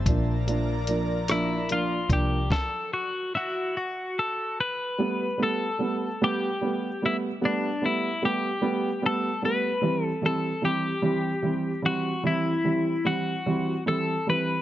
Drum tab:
HH |xxxxxx|------|------|------|
SD |---r--|o-----|------|------|
BD |o----o|o-----|------|------|

HH |------|------|
SD |------|------|
BD |------|------|